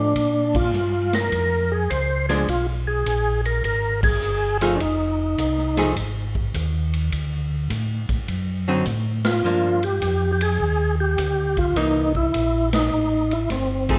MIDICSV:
0, 0, Header, 1, 5, 480
1, 0, Start_track
1, 0, Tempo, 580271
1, 127, Time_signature, 4, 2, 24, 8
1, 11572, End_track
2, 0, Start_track
2, 0, Title_t, "Tonewheel organ"
2, 0, Program_c, 0, 16
2, 0, Note_on_c, 0, 62, 86
2, 460, Note_on_c, 0, 65, 89
2, 469, Note_off_c, 0, 62, 0
2, 948, Note_on_c, 0, 70, 109
2, 950, Note_off_c, 0, 65, 0
2, 1420, Note_on_c, 0, 68, 76
2, 1434, Note_off_c, 0, 70, 0
2, 1572, Note_on_c, 0, 72, 88
2, 1578, Note_off_c, 0, 68, 0
2, 1871, Note_off_c, 0, 72, 0
2, 1895, Note_on_c, 0, 68, 95
2, 2056, Note_off_c, 0, 68, 0
2, 2063, Note_on_c, 0, 65, 87
2, 2205, Note_off_c, 0, 65, 0
2, 2378, Note_on_c, 0, 68, 86
2, 2822, Note_off_c, 0, 68, 0
2, 2861, Note_on_c, 0, 70, 84
2, 3003, Note_off_c, 0, 70, 0
2, 3020, Note_on_c, 0, 70, 96
2, 3315, Note_off_c, 0, 70, 0
2, 3341, Note_on_c, 0, 68, 95
2, 3783, Note_off_c, 0, 68, 0
2, 3824, Note_on_c, 0, 65, 83
2, 3933, Note_on_c, 0, 62, 60
2, 3941, Note_off_c, 0, 65, 0
2, 3970, Note_off_c, 0, 62, 0
2, 3974, Note_on_c, 0, 63, 68
2, 4898, Note_off_c, 0, 63, 0
2, 7650, Note_on_c, 0, 65, 95
2, 8139, Note_on_c, 0, 67, 86
2, 8143, Note_off_c, 0, 65, 0
2, 8531, Note_off_c, 0, 67, 0
2, 8541, Note_on_c, 0, 67, 82
2, 8613, Note_off_c, 0, 67, 0
2, 8621, Note_on_c, 0, 68, 96
2, 9061, Note_off_c, 0, 68, 0
2, 9102, Note_on_c, 0, 67, 84
2, 9580, Note_on_c, 0, 65, 91
2, 9589, Note_off_c, 0, 67, 0
2, 9735, Note_on_c, 0, 63, 93
2, 9736, Note_off_c, 0, 65, 0
2, 10030, Note_off_c, 0, 63, 0
2, 10063, Note_on_c, 0, 64, 89
2, 10502, Note_off_c, 0, 64, 0
2, 10542, Note_on_c, 0, 63, 88
2, 11024, Note_on_c, 0, 64, 75
2, 11029, Note_off_c, 0, 63, 0
2, 11163, Note_off_c, 0, 64, 0
2, 11183, Note_on_c, 0, 60, 62
2, 11572, Note_off_c, 0, 60, 0
2, 11572, End_track
3, 0, Start_track
3, 0, Title_t, "Hollow-body jazz guitar"
3, 0, Program_c, 1, 26
3, 0, Note_on_c, 1, 53, 59
3, 0, Note_on_c, 1, 57, 59
3, 0, Note_on_c, 1, 63, 62
3, 0, Note_on_c, 1, 68, 63
3, 100, Note_off_c, 1, 53, 0
3, 101, Note_off_c, 1, 63, 0
3, 102, Note_off_c, 1, 57, 0
3, 104, Note_off_c, 1, 68, 0
3, 1897, Note_on_c, 1, 53, 58
3, 1903, Note_on_c, 1, 56, 68
3, 1906, Note_on_c, 1, 62, 64
3, 2036, Note_off_c, 1, 53, 0
3, 2039, Note_off_c, 1, 56, 0
3, 2041, Note_off_c, 1, 62, 0
3, 3817, Note_on_c, 1, 53, 71
3, 3821, Note_on_c, 1, 57, 65
3, 3822, Note_on_c, 1, 63, 71
3, 3829, Note_on_c, 1, 68, 71
3, 3956, Note_off_c, 1, 53, 0
3, 3958, Note_off_c, 1, 57, 0
3, 3959, Note_off_c, 1, 63, 0
3, 3962, Note_off_c, 1, 68, 0
3, 4775, Note_on_c, 1, 53, 65
3, 4779, Note_on_c, 1, 57, 62
3, 4780, Note_on_c, 1, 63, 64
3, 4785, Note_on_c, 1, 68, 62
3, 4915, Note_off_c, 1, 53, 0
3, 4917, Note_off_c, 1, 57, 0
3, 4917, Note_off_c, 1, 63, 0
3, 4920, Note_off_c, 1, 68, 0
3, 7178, Note_on_c, 1, 50, 57
3, 7181, Note_on_c, 1, 54, 65
3, 7185, Note_on_c, 1, 60, 66
3, 7190, Note_on_c, 1, 63, 64
3, 7315, Note_off_c, 1, 50, 0
3, 7317, Note_off_c, 1, 54, 0
3, 7319, Note_off_c, 1, 60, 0
3, 7321, Note_off_c, 1, 63, 0
3, 7812, Note_on_c, 1, 53, 62
3, 7822, Note_on_c, 1, 58, 56
3, 7824, Note_on_c, 1, 62, 56
3, 8099, Note_off_c, 1, 53, 0
3, 8104, Note_off_c, 1, 58, 0
3, 8105, Note_off_c, 1, 62, 0
3, 9727, Note_on_c, 1, 52, 54
3, 9735, Note_on_c, 1, 58, 64
3, 9738, Note_on_c, 1, 63, 66
3, 10016, Note_off_c, 1, 52, 0
3, 10020, Note_off_c, 1, 58, 0
3, 10021, Note_off_c, 1, 63, 0
3, 11490, Note_on_c, 1, 53, 51
3, 11496, Note_on_c, 1, 57, 67
3, 11497, Note_on_c, 1, 63, 61
3, 11503, Note_on_c, 1, 68, 53
3, 11572, Note_off_c, 1, 53, 0
3, 11572, Note_off_c, 1, 57, 0
3, 11572, Note_off_c, 1, 63, 0
3, 11572, Note_off_c, 1, 68, 0
3, 11572, End_track
4, 0, Start_track
4, 0, Title_t, "Tonewheel organ"
4, 0, Program_c, 2, 16
4, 0, Note_on_c, 2, 45, 90
4, 115, Note_off_c, 2, 45, 0
4, 128, Note_on_c, 2, 46, 83
4, 594, Note_off_c, 2, 46, 0
4, 606, Note_on_c, 2, 43, 88
4, 1073, Note_off_c, 2, 43, 0
4, 1091, Note_on_c, 2, 41, 71
4, 1556, Note_off_c, 2, 41, 0
4, 1572, Note_on_c, 2, 37, 84
4, 2036, Note_off_c, 2, 37, 0
4, 2051, Note_on_c, 2, 35, 78
4, 2516, Note_off_c, 2, 35, 0
4, 2531, Note_on_c, 2, 34, 93
4, 2996, Note_off_c, 2, 34, 0
4, 3010, Note_on_c, 2, 32, 88
4, 3475, Note_off_c, 2, 32, 0
4, 3490, Note_on_c, 2, 31, 86
4, 3955, Note_off_c, 2, 31, 0
4, 3969, Note_on_c, 2, 29, 81
4, 4435, Note_off_c, 2, 29, 0
4, 4449, Note_on_c, 2, 36, 86
4, 4914, Note_off_c, 2, 36, 0
4, 4928, Note_on_c, 2, 32, 89
4, 5394, Note_off_c, 2, 32, 0
4, 5410, Note_on_c, 2, 39, 86
4, 5875, Note_off_c, 2, 39, 0
4, 5891, Note_on_c, 2, 38, 91
4, 6354, Note_off_c, 2, 38, 0
4, 6369, Note_on_c, 2, 45, 87
4, 6668, Note_off_c, 2, 45, 0
4, 6691, Note_on_c, 2, 45, 38
4, 6769, Note_off_c, 2, 45, 0
4, 6849, Note_on_c, 2, 42, 82
4, 7313, Note_off_c, 2, 42, 0
4, 7326, Note_on_c, 2, 45, 86
4, 7792, Note_off_c, 2, 45, 0
4, 7807, Note_on_c, 2, 43, 78
4, 8272, Note_off_c, 2, 43, 0
4, 8289, Note_on_c, 2, 41, 90
4, 8753, Note_off_c, 2, 41, 0
4, 8768, Note_on_c, 2, 39, 85
4, 9232, Note_off_c, 2, 39, 0
4, 9248, Note_on_c, 2, 38, 84
4, 9712, Note_off_c, 2, 38, 0
4, 9728, Note_on_c, 2, 36, 74
4, 10192, Note_off_c, 2, 36, 0
4, 10210, Note_on_c, 2, 34, 90
4, 10674, Note_off_c, 2, 34, 0
4, 10680, Note_on_c, 2, 33, 82
4, 11149, Note_off_c, 2, 33, 0
4, 11165, Note_on_c, 2, 31, 85
4, 11572, Note_off_c, 2, 31, 0
4, 11572, End_track
5, 0, Start_track
5, 0, Title_t, "Drums"
5, 129, Note_on_c, 9, 51, 63
5, 130, Note_on_c, 9, 36, 24
5, 211, Note_off_c, 9, 51, 0
5, 213, Note_off_c, 9, 36, 0
5, 452, Note_on_c, 9, 49, 61
5, 454, Note_on_c, 9, 36, 67
5, 535, Note_off_c, 9, 49, 0
5, 536, Note_off_c, 9, 36, 0
5, 609, Note_on_c, 9, 44, 54
5, 692, Note_off_c, 9, 44, 0
5, 935, Note_on_c, 9, 51, 47
5, 937, Note_on_c, 9, 38, 68
5, 1018, Note_off_c, 9, 51, 0
5, 1019, Note_off_c, 9, 38, 0
5, 1092, Note_on_c, 9, 36, 18
5, 1092, Note_on_c, 9, 51, 58
5, 1175, Note_off_c, 9, 36, 0
5, 1175, Note_off_c, 9, 51, 0
5, 1573, Note_on_c, 9, 36, 23
5, 1574, Note_on_c, 9, 44, 51
5, 1574, Note_on_c, 9, 51, 60
5, 1656, Note_off_c, 9, 36, 0
5, 1657, Note_off_c, 9, 44, 0
5, 1657, Note_off_c, 9, 51, 0
5, 1896, Note_on_c, 9, 51, 45
5, 1897, Note_on_c, 9, 38, 47
5, 1978, Note_off_c, 9, 51, 0
5, 1980, Note_off_c, 9, 38, 0
5, 2054, Note_on_c, 9, 36, 25
5, 2054, Note_on_c, 9, 51, 58
5, 2137, Note_off_c, 9, 36, 0
5, 2137, Note_off_c, 9, 51, 0
5, 2533, Note_on_c, 9, 36, 18
5, 2533, Note_on_c, 9, 44, 44
5, 2533, Note_on_c, 9, 51, 60
5, 2615, Note_off_c, 9, 44, 0
5, 2615, Note_off_c, 9, 51, 0
5, 2616, Note_off_c, 9, 36, 0
5, 2856, Note_on_c, 9, 51, 45
5, 2939, Note_off_c, 9, 51, 0
5, 3011, Note_on_c, 9, 51, 52
5, 3012, Note_on_c, 9, 36, 22
5, 3093, Note_off_c, 9, 51, 0
5, 3095, Note_off_c, 9, 36, 0
5, 3334, Note_on_c, 9, 36, 85
5, 3336, Note_on_c, 9, 49, 75
5, 3417, Note_off_c, 9, 36, 0
5, 3419, Note_off_c, 9, 49, 0
5, 3490, Note_on_c, 9, 44, 50
5, 3573, Note_off_c, 9, 44, 0
5, 3814, Note_on_c, 9, 51, 46
5, 3897, Note_off_c, 9, 51, 0
5, 3971, Note_on_c, 9, 36, 22
5, 3972, Note_on_c, 9, 51, 58
5, 4054, Note_off_c, 9, 36, 0
5, 4055, Note_off_c, 9, 51, 0
5, 4451, Note_on_c, 9, 36, 17
5, 4452, Note_on_c, 9, 44, 56
5, 4452, Note_on_c, 9, 51, 63
5, 4534, Note_off_c, 9, 36, 0
5, 4535, Note_off_c, 9, 44, 0
5, 4535, Note_off_c, 9, 51, 0
5, 4615, Note_on_c, 9, 38, 23
5, 4698, Note_off_c, 9, 38, 0
5, 4774, Note_on_c, 9, 51, 49
5, 4775, Note_on_c, 9, 38, 49
5, 4857, Note_off_c, 9, 38, 0
5, 4857, Note_off_c, 9, 51, 0
5, 4932, Note_on_c, 9, 36, 21
5, 4934, Note_on_c, 9, 51, 65
5, 5015, Note_off_c, 9, 36, 0
5, 5016, Note_off_c, 9, 51, 0
5, 5254, Note_on_c, 9, 36, 54
5, 5337, Note_off_c, 9, 36, 0
5, 5412, Note_on_c, 9, 36, 25
5, 5412, Note_on_c, 9, 44, 60
5, 5412, Note_on_c, 9, 51, 61
5, 5494, Note_off_c, 9, 36, 0
5, 5495, Note_off_c, 9, 44, 0
5, 5495, Note_off_c, 9, 51, 0
5, 5736, Note_on_c, 9, 51, 50
5, 5819, Note_off_c, 9, 51, 0
5, 5891, Note_on_c, 9, 36, 22
5, 5891, Note_on_c, 9, 51, 61
5, 5974, Note_off_c, 9, 36, 0
5, 5974, Note_off_c, 9, 51, 0
5, 6370, Note_on_c, 9, 44, 42
5, 6370, Note_on_c, 9, 51, 60
5, 6371, Note_on_c, 9, 36, 21
5, 6453, Note_off_c, 9, 44, 0
5, 6453, Note_off_c, 9, 51, 0
5, 6454, Note_off_c, 9, 36, 0
5, 6690, Note_on_c, 9, 51, 45
5, 6692, Note_on_c, 9, 36, 59
5, 6773, Note_off_c, 9, 51, 0
5, 6775, Note_off_c, 9, 36, 0
5, 6850, Note_on_c, 9, 51, 55
5, 6851, Note_on_c, 9, 36, 21
5, 6932, Note_off_c, 9, 51, 0
5, 6933, Note_off_c, 9, 36, 0
5, 7325, Note_on_c, 9, 44, 47
5, 7325, Note_on_c, 9, 51, 59
5, 7329, Note_on_c, 9, 36, 23
5, 7408, Note_off_c, 9, 44, 0
5, 7408, Note_off_c, 9, 51, 0
5, 7412, Note_off_c, 9, 36, 0
5, 7647, Note_on_c, 9, 51, 65
5, 7648, Note_on_c, 9, 38, 79
5, 7729, Note_off_c, 9, 51, 0
5, 7731, Note_off_c, 9, 38, 0
5, 8129, Note_on_c, 9, 51, 43
5, 8212, Note_off_c, 9, 51, 0
5, 8285, Note_on_c, 9, 44, 46
5, 8285, Note_on_c, 9, 51, 65
5, 8288, Note_on_c, 9, 36, 19
5, 8368, Note_off_c, 9, 44, 0
5, 8368, Note_off_c, 9, 51, 0
5, 8371, Note_off_c, 9, 36, 0
5, 8608, Note_on_c, 9, 51, 75
5, 8691, Note_off_c, 9, 51, 0
5, 8768, Note_on_c, 9, 36, 26
5, 8851, Note_off_c, 9, 36, 0
5, 9248, Note_on_c, 9, 36, 22
5, 9248, Note_on_c, 9, 44, 61
5, 9248, Note_on_c, 9, 51, 66
5, 9330, Note_off_c, 9, 44, 0
5, 9330, Note_off_c, 9, 51, 0
5, 9331, Note_off_c, 9, 36, 0
5, 9569, Note_on_c, 9, 51, 48
5, 9570, Note_on_c, 9, 36, 54
5, 9652, Note_off_c, 9, 51, 0
5, 9653, Note_off_c, 9, 36, 0
5, 9728, Note_on_c, 9, 36, 19
5, 9729, Note_on_c, 9, 51, 65
5, 9811, Note_off_c, 9, 36, 0
5, 9812, Note_off_c, 9, 51, 0
5, 10050, Note_on_c, 9, 36, 49
5, 10133, Note_off_c, 9, 36, 0
5, 10207, Note_on_c, 9, 44, 54
5, 10207, Note_on_c, 9, 51, 65
5, 10208, Note_on_c, 9, 36, 21
5, 10290, Note_off_c, 9, 44, 0
5, 10290, Note_off_c, 9, 51, 0
5, 10291, Note_off_c, 9, 36, 0
5, 10529, Note_on_c, 9, 51, 76
5, 10530, Note_on_c, 9, 38, 78
5, 10611, Note_off_c, 9, 51, 0
5, 10613, Note_off_c, 9, 38, 0
5, 11011, Note_on_c, 9, 51, 47
5, 11094, Note_off_c, 9, 51, 0
5, 11165, Note_on_c, 9, 44, 50
5, 11165, Note_on_c, 9, 51, 61
5, 11167, Note_on_c, 9, 38, 35
5, 11169, Note_on_c, 9, 36, 19
5, 11248, Note_off_c, 9, 44, 0
5, 11248, Note_off_c, 9, 51, 0
5, 11250, Note_off_c, 9, 38, 0
5, 11251, Note_off_c, 9, 36, 0
5, 11490, Note_on_c, 9, 51, 46
5, 11491, Note_on_c, 9, 36, 56
5, 11572, Note_off_c, 9, 36, 0
5, 11572, Note_off_c, 9, 51, 0
5, 11572, End_track
0, 0, End_of_file